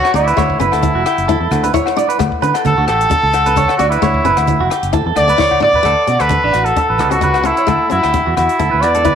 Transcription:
Already playing: trumpet F#4, clean electric guitar C#5
0.04 cross-stick, low agogo
0.14 fingered electric bass D2, nylon-string guitar C#4, trumpet E4, clean electric guitar D5, closed hi-hat
0.27 clean electric guitar B4, closed hi-hat
0.37 fingered electric bass D2, nylon-string guitar A3, clean electric guitar C#5, kick, cross-stick, closed hi-hat, low agogo
0.50 kick
0.60 fingered electric bass F#1, nylon-string guitar C#4, trumpet E4, clean electric guitar B4, closed hi-hat, muted conga, low conga
0.72 fingered electric bass D2, clean electric guitar A4, cross-stick, closed hi-hat, low agogo
0.83 nylon-string guitar E4, kick, closed hi-hat, high conga
0.95 fingered electric bass F#1, clean electric guitar F#4
1.06 clean electric guitar G4, cross-stick, closed hi-hat, low agogo
1.18 fingered electric bass F#1, closed hi-hat
1.28 fingered electric bass D2, nylon-string guitar E4, clean electric guitar A4, kick, closed hi-hat, muted conga
1.40 fingered electric bass E2, clean electric guitar A4
1.51 fingered electric bass D2, cross-stick, closed hi-hat, high conga, low agogo
1.64 nylon-string guitar D4, clean electric guitar B4, closed hi-hat
1.74 nylon-string guitar E4, clean electric guitar C#5, kick, closed hi-hat, high conga
1.86 cross-stick, low agogo
1.97 nylon-string guitar D4, clean electric guitar D5, closed hi-hat, muted conga
2.09 clean electric guitar B4, closed hi-hat
2.19 fingered electric bass D2, nylon-string guitar A3, muted clean electric guitar stroke, kick, cross-stick, closed hi-hat, low agogo
2.32 kick
2.42 fingered electric bass D3, nylon-string guitar C#4, clean electric guitar B4, closed hi-hat
2.54 clean electric guitar A4, cross-stick, closed hi-hat, low agogo
2.65 fingered electric bass D2, nylon-string guitar D4, trumpet A4, kick, closed hi-hat, high conga
2.78 fingered electric bass D2, clean electric guitar F#4
2.88 fingered electric bass A1, clean electric guitar G4, trumpet A4, cross-stick, closed hi-hat, low agogo
3.01 closed hi-hat
3.10 nylon-string guitar D4, clean electric guitar A4, kick, closed hi-hat, muted conga, high conga
3.23 fingered electric bass C#2, clean electric guitar A4
3.33 cross-stick, closed hi-hat, low agogo
3.46 nylon-string guitar C#4, clean electric guitar B4, closed hi-hat
3.56 nylon-string guitar D4, clean electric guitar C#5, kick, closed hi-hat, high conga
3.68 cross-stick, low agogo
3.77 fingered electric bass D2, nylon-string guitar C#4, trumpet F#4, clean electric guitar D5, closed hi-hat
3.90 trumpet E4, clean electric guitar B4, closed hi-hat
4.02 fingered electric bass D2, nylon-string guitar A3, clean electric guitar C#5, kick, cross-stick, closed hi-hat, low agogo
4.14 kick
4.25 fingered electric bass F#1, nylon-string guitar C#4, clean electric guitar B4, closed hi-hat, muted conga, low conga
4.37 fingered electric bass D2, cross-stick, closed hi-hat, low agogo
4.47 nylon-string guitar E4, kick, closed hi-hat, high conga
4.60 fingered electric bass F#1, clean electric guitar F#4
4.70 clean electric guitar G4, cross-stick, closed hi-hat, low agogo
4.83 fingered electric bass F#1, closed hi-hat
4.93 fingered electric bass D2, nylon-string guitar E4, clean electric guitar A4, kick, closed hi-hat
5.06 fingered electric bass E2, clean electric guitar A4
5.16 fingered electric bass D2, trumpet D5, cross-stick, closed hi-hat, high conga, low agogo
5.28 nylon-string guitar D4, clean electric guitar B4, closed hi-hat
5.38 nylon-string guitar E4, clean electric guitar C#5, kick, snare, high conga
5.51 kick, high conga, low agogo
5.60 nylon-string guitar D4, trumpet D5, clean electric guitar D5, mid tom, low conga
5.73 clean electric guitar B4, kick, low conga
5.83 fingered electric bass D2, clean electric guitar A4, muted nylon-string guitar stroke, kick, cross-stick, closed hi-hat, muted conga, low agogo
6.07 fingered electric bass B2, nylon-string guitar C#4, clean electric guitar F#4, closed hi-hat, muted conga
6.19 fingered electric bass D2, clean electric guitar A4, trumpet B4, cross-stick, closed hi-hat, low agogo
6.29 nylon-string guitar D4, kick, closed hi-hat, high conga
6.44 fingered electric bass A1, clean electric guitar D4
6.53 fingered electric bass A1, clean electric guitar F#4, cross-stick, closed hi-hat, low agogo
6.65 trumpet A4, closed hi-hat
6.76 nylon-string guitar D4, clean electric guitar A4, kick, closed hi-hat, muted conga
6.90 fingered electric bass A1, clean electric guitar B4
6.98 fingered electric bass C#2, cross-stick, closed hi-hat, high conga, low agogo
7.11 nylon-string guitar C#4, trumpet F#4, clean electric guitar A4, closed hi-hat
7.21 nylon-string guitar D4, clean electric guitar B4, kick, closed hi-hat, high conga
7.34 cross-stick, low agogo
7.43 nylon-string guitar C#4, trumpet E4, clean electric guitar A4, closed hi-hat
7.57 clean electric guitar C#5, closed hi-hat
7.67 fingered electric bass D2, nylon-string guitar A3, clean electric guitar A4, kick, cross-stick, closed hi-hat, low agogo
7.90 fingered electric bass F#2, nylon-string guitar C#4, trumpet E4, clean electric guitar F#4, closed hi-hat, muted conga
8.03 fingered electric bass D2, clean electric guitar G4, cross-stick, closed hi-hat, low agogo
8.14 nylon-string guitar E4, kick, closed hi-hat, high conga
8.26 fingered electric bass E2, clean electric guitar F#4
8.37 fingered electric bass E2, trumpet E4, clean electric guitar F#4, cross-stick, closed hi-hat, high conga, low agogo
8.49 closed hi-hat
8.59 fingered electric bass D2, nylon-string guitar E4, clean electric guitar A4, kick, closed hi-hat
8.71 fingered electric bass D2, clean electric guitar B4
8.82 fingered electric bass E2, trumpet D5, cross-stick, closed hi-hat, low agogo
8.94 nylon-string guitar D4, clean electric guitar A4, closed hi-hat
9.05 nylon-string guitar E4, clean electric guitar B4, kick, closed hi-hat, high conga

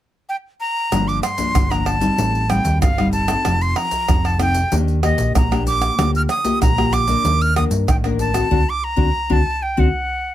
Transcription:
0.29 flute G5
0.60 flute A#5
0.92 fingered electric bass G1, nylon-string guitar G2 F3 A#3 D4, pandeiro, tamborim, shaker, surdo
1.08 flute D6, pandeiro, shaker
1.23 flute C6, pandeiro, tamborim, shaker
1.38 nylon-string guitar F3 A#3 D4, pandeiro, shaker, surdo
1.55 fingered electric bass G1, nylon-string guitar D3, pandeiro, tamborim, shaker, surdo
1.71 nylon-string guitar F3 A#3 D4, flute A#5, pandeiro, tamborim, shaker
1.86 flute A5, pandeiro, tamborim
2.00 nylon-string guitar G3 C4 D#4, pandeiro, shaker, surdo
2.18 fingered electric bass A1, nylon-string guitar A2, pandeiro, shaker, surdo
2.35 pandeiro, shaker
2.49 nylon-string guitar G3 C4 D#4, flute G5, pandeiro, tamborim, shaker, surdo
2.65 fingered electric bass D#2, pandeiro, shaker, surdo
2.81 fingered electric bass G1, nylon-string guitar A2, flute F5, pandeiro, tamborim, shaker, surdo
2.98 nylon-string guitar G3 C4 D#4, pandeiro, tamborim, shaker
3.12 flute A5, pandeiro, shaker
3.28 nylon-string guitar C4 D#4 A4, pandeiro, tamborim, shaker, surdo
3.45 fingered electric bass F1, nylon-string guitar F3, pandeiro, tamborim, shaker, surdo
3.61 flute C6, pandeiro, shaker
3.76 flute A#5, pandeiro, tamborim
3.91 pandeiro, shaker, surdo
4.08 fingered electric bass F1, nylon-string guitar C3 C4 D#4 A4, pandeiro, tamborim, shaker, surdo
4.25 flute A5, pandeiro, tamborim, shaker
4.39 nylon-string guitar C4 D#4 A4, flute G5, pandeiro, tamborim, shaker
4.54 pandeiro, shaker, surdo
4.72 fingered electric bass D#2, nylon-string guitar D#3 A#3 D4 G4, pandeiro, shaker, surdo
4.88 pandeiro, shaker
5.03 nylon-string guitar A#3 G4, flute D#5, pandeiro, tamborim, surdo
5.18 fingered electric bass A#1, pandeiro, shaker, surdo
5.35 fingered electric bass A#1, nylon-string guitar A#2, flute A#5, pandeiro, tamborim, shaker, surdo
5.51 nylon-string guitar A#3 D4 G4, pandeiro, tamborim, shaker
5.67 flute D6, pandeiro, shaker
5.82 pandeiro, tamborim, shaker, surdo
5.98 fingered electric bass D2, nylon-string guitar D3 A#3 F4 G4, pandeiro, tamborim, shaker, surdo
6.15 flute F6, pandeiro, shaker
6.29 flute D#6, pandeiro, tamborim, shaker
6.44 nylon-string guitar A#3 F4 G4, pandeiro, shaker, surdo
6.61 fingered electric bass A#1, nylon-string guitar D3, flute A#5, pandeiro, tamborim, shaker, surdo
6.78 nylon-string guitar A#3 F4 G4, pandeiro, tamborim, shaker
6.93 flute D6, pandeiro, tamborim, shaker
7.08 nylon-string guitar A#3 D4 A#4, pandeiro, shaker, surdo
7.24 fingered electric bass D#2, nylon-string guitar D#3, pandeiro, shaker, surdo
7.41 flute F6, pandeiro, shaker
7.55 nylon-string guitar A#3 D4 A#4, flute D#6, pandeiro, tamborim, shaker, surdo
7.71 fingered electric bass G2, pandeiro, shaker, surdo
7.87 fingered electric bass A1, nylon-string guitar D#3, flute G5, pandeiro, tamborim, shaker, surdo
8.04 nylon-string guitar A#3 D4 A#4, pandeiro, tamborim, shaker
8.19 flute A5, pandeiro, shaker
8.34 nylon-string guitar C4 F#4 A4, pandeiro, tamborim, shaker, surdo
8.51 fingered electric bass D2, nylon-string guitar C4 D4 F#4, surdo
8.69 flute D6
8.84 flute A#5
8.96 fingered electric bass D2, nylon-string guitar C4 D4 F#4, surdo
9.30 fingered electric bass D2, nylon-string guitar C4 D4 F#4, flute A5, surdo
9.62 flute G5
9.77 fingered electric bass D2, nylon-string guitar C4 D4 F#4, flute F#5, surdo

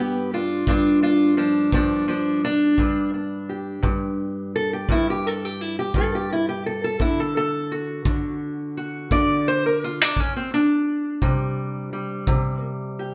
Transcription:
Already playing: steel-string acoustic guitar G2 B3
0.00 steel-string acoustic guitar G4
0.34 steel-string acoustic guitar D4 F4
0.67 steel-string acoustic guitar G2 D4 F4, kick
1.03 steel-string acoustic guitar D4 F4
1.37 steel-string acoustic guitar F3 D4
1.72 steel-string acoustic guitar G2 F3 D4, kick
2.08 steel-string acoustic guitar F3 D4
2.45 steel-string acoustic guitar D4
2.78 steel-string acoustic guitar G2, kick
3.14 steel-string acoustic guitar D4
3.49 steel-string acoustic guitar G4
3.82 steel-string acoustic guitar G2, kick
4.56 steel-string acoustic guitar A4
4.73 steel-string acoustic guitar G4
4.89 steel-string acoustic guitar G2 E4, kick
5.10 steel-string acoustic guitar G4
5.27 steel-string acoustic guitar A4
5.45 steel-string acoustic guitar G4
5.61 steel-string acoustic guitar E4
5.79 steel-string acoustic guitar G4
5.94 steel-string acoustic guitar G2 A4, kick
6.15 steel-string acoustic guitar G4
6.32 steel-string acoustic guitar E4
6.49 steel-string acoustic guitar G4
6.66 steel-string acoustic guitar A4
6.84 steel-string acoustic guitar A4
7.00 steel-string acoustic guitar D3 E4, kick
7.20 steel-string acoustic guitar A4
7.37 steel-string acoustic guitar A4
7.72 steel-string acoustic guitar F#4
8.05 steel-string acoustic guitar D3, kick
8.77 steel-string acoustic guitar F#4
9.11 steel-string acoustic guitar D3 D5, kick
9.48 steel-string acoustic guitar C5
9.66 steel-string acoustic guitar A#4
9.84 steel-string acoustic guitar F4
10.02 steel-string acoustic guitar D4
10.16 steel-string acoustic guitar C#4, kick
10.36 steel-string acoustic guitar C4
10.54 steel-string acoustic guitar D4
11.22 steel-string acoustic guitar C3 G3, kick
11.93 steel-string acoustic guitar G3
12.27 steel-string acoustic guitar C3, kick
12.99 steel-string acoustic guitar G4

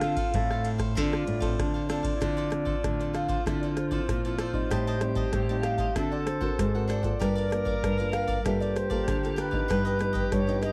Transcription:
Already playing: nylon-string guitar D3, tenor saxophone F4, flute F5
0.01 nylon-string guitar C4 F4 A4, cavaquinho D4 A4 C5 F5, cross-stick, ride
0.16 cavaquinho A4 C5 F5, kick, ride
0.34 nylon-string guitar A2 C4 F4 A4, tenor saxophone A4, kick, ride
0.51 cavaquinho A4 C5 F5, cross-stick
0.64 cavaquinho D4 A4 C5 F5, ride
0.78 cavaquinho A4 C5 F5, kick, cross-stick, ride
0.95 nylon-string guitar D3 C4 F4 A4, cavaquinho D4 A4 C5 F5, tenor saxophone F4, flute D5, kick, ride
1.13 cavaquinho A4 C5 F5, cross-stick
1.27 nylon-string guitar A2, muted cavaquinho stroke, ride
1.40 nylon-string guitar C4 F4 A4, cavaquinho A4 C5 F5, kick, ride
1.58 nylon-string guitar A2 D3, kick, cross-stick, ride
1.74 cavaquinho A4 C5 F5
1.89 nylon-string guitar C4 F4 A4, cavaquinho D4 A4 C5 F5, flute D5, cross-stick, ride
2.03 cavaquinho A4 C5 F5, kick, ride
2.16 tenor saxophone E4
2.20 nylon-string guitar D3 F3 C4 E4, cavaquinho F4 A4 C5 D5, tenor saxophone F4, kick, cross-stick, closed hi-hat
2.37 cavaquinho A4 C5 D5, closed hi-hat
2.50 nylon-string guitar F3 C4, muted cavaquinho stroke, cross-stick, closed hi-hat
2.65 cavaquinho A4 C5 D5, kick
2.83 nylon-string guitar A2 D3, kick, cross-stick, closed hi-hat
3.00 nylon-string guitar F3 C4, cavaquinho A4 C5 D5, closed hi-hat
3.13 cavaquinho F4 A4 C5 D5, flute F5, cross-stick, closed hi-hat
3.28 cavaquinho A4 C5 D5, kick, closed hi-hat
3.46 nylon-string guitar D3 F3 C4 E4, cavaquinho F4 A4 C5 D5, flute E5, kick, cross-stick, closed hi-hat
3.61 cavaquinho A4 C5 D5, flute D5, closed hi-hat
3.76 flute C5, muted cavaquinho stroke, cross-stick, closed hi-hat
3.91 nylon-string guitar F3 C4 E4, cavaquinho A4 C5 D5, kick, closed hi-hat
4.09 nylon-string guitar A#2, kick, cross-stick, closed hi-hat
4.25 nylon-string guitar F3 C4 E4, cavaquinho A4 C5 D5, closed hi-hat
4.38 cavaquinho F4 A4 C5 D5, flute C5, cross-stick, closed hi-hat
4.53 nylon-string guitar G3 C4 D#4, cavaquinho A4 C5 D5, kick
4.70 nylon-string guitar A2, cavaquinho G4 C5 D#5 A5, tenor saxophone G4, kick, cross-stick, closed hi-hat
4.87 cavaquinho C5 D#5 A5, closed hi-hat
5.01 nylon-string guitar G3 C4 D#4, muted cavaquinho stroke, cross-stick, closed hi-hat
5.15 cavaquinho C5 D#5 A5, kick, closed hi-hat
5.33 nylon-string guitar A2, kick, cross-stick, closed hi-hat
5.49 nylon-string guitar G3 C4 D#4, cavaquinho C5 D#5 A5, closed hi-hat
5.61 cavaquinho G4 C5 D#5, flute F5, cross-stick, closed hi-hat
5.65 cavaquinho A5
5.78 cavaquinho C5 D#5 A5, kick, closed hi-hat
5.95 nylon-string guitar D3 C4 F#4, cavaquinho D4 A4 C5 F#5, tenor saxophone A4, flute E5, kick, cross-stick, closed hi-hat
6.11 cavaquinho A4 C5 F#5, flute D5
6.25 flute C5, muted cavaquinho stroke, cross-stick, closed hi-hat
6.41 nylon-string guitar C4 F#4 A#4, cavaquinho A4 C5 F#5, kick
6.59 nylon-string guitar G#2, kick, cross-stick, closed hi-hat
6.75 nylon-string guitar C4 F#4 A#4, cavaquinho A4 C5 F#5
6.87 cavaquinho D4 A4 C5 F#5, flute D5, cross-stick, closed hi-hat
7.03 nylon-string guitar A#3 F4 A4, cavaquinho A4 C5 F#5, kick, closed hi-hat
7.20 nylon-string guitar G2 G3, cavaquinho G4 A#4 D5 F5, tenor saxophone A#4, kick, cross-stick, closed hi-hat
7.35 cavaquinho A#4 D5 F5, closed hi-hat
7.50 nylon-string guitar A#3 F4, muted cavaquinho stroke, cross-stick, closed hi-hat
7.65 cavaquinho A#4 D5 F5, kick
7.83 nylon-string guitar G2 D3, kick, cross-stick, closed hi-hat
7.97 nylon-string guitar A#3 F4, cavaquinho A#4 D5 F5, closed hi-hat
8.12 cavaquinho G4 A#4 D5 F5, flute F5, cross-stick, closed hi-hat
8.27 cavaquinho A#4 D5 F5, kick, closed hi-hat
8.44 nylon-string guitar G2 G3 A#3 F4 A4, cavaquinho G4 A#4 D5 F5, tenor saxophone G4, flute E5, kick, cross-stick, closed hi-hat
8.60 cavaquinho A#4 D5 F5, flute D5, closed hi-hat
8.76 flute C5, muted cavaquinho stroke, cross-stick, closed hi-hat
8.90 nylon-string guitar A#3 F4 A4, cavaquinho A#4 D5 F5, kick, closed hi-hat
9.08 nylon-string guitar D3, kick, cross-stick, closed hi-hat
9.23 nylon-string guitar A#3 F4 A4, cavaquinho A#4 D5 F5, closed hi-hat
9.36 cavaquinho G4 A#4 D5 F5, flute B4, cross-stick, closed hi-hat
9.51 nylon-string guitar F3 B3 D#4, cavaquinho A#4 D5 F5, kick
9.68 nylon-string guitar G2, cavaquinho F4 G4 B4 D#5, tenor saxophone G4, kick, cross-stick, closed hi-hat
9.85 cavaquinho G4 B4 D#5, closed hi-hat
9.99 nylon-string guitar F3 B3 D#4, muted cavaquinho stroke, cross-stick, closed hi-hat
10.13 cavaquinho G4 B4 D#5, kick, closed hi-hat
10.32 nylon-string guitar G2, flute C#5, kick, cross-stick, closed hi-hat
10.47 nylon-string guitar F3 B3 D#4, cavaquinho G4 B4 D#5, closed hi-hat
10.61 cavaquinho F4 G4 B4 D#5, flute D#5, cross-stick, closed hi-hat

